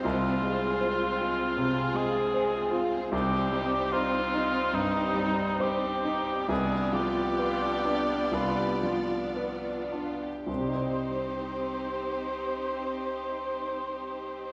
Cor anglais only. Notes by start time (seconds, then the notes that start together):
0.03 F4
1.96 G#4
3.12 G4
3.92 F4
4.74 D#4
5.61 G4
6.49 G#4
6.94 G4
8.34 B4
10.47 C5